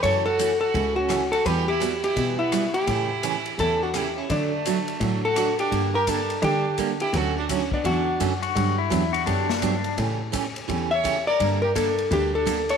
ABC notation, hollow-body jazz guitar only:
X:1
M:4/4
L:1/8
Q:"Swing" 1/4=169
K:Glyd
V:1 name="Hollow-body jazz guitar"
c A2 A2 F2 A | B G2 G2 E2 G- | G4 A F G E | D4- D A2 G- |
G _B A2 G2 z G | A F E D F3 z | z8 | z4 z e2 d- |
d _B A2 G A2 c |]